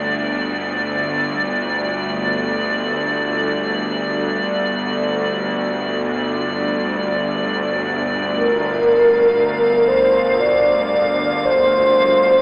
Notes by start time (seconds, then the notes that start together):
Already playing: G1 D2 D5
8.31 A#4 F5
9.88 C5
10.40 D5
11.45 C5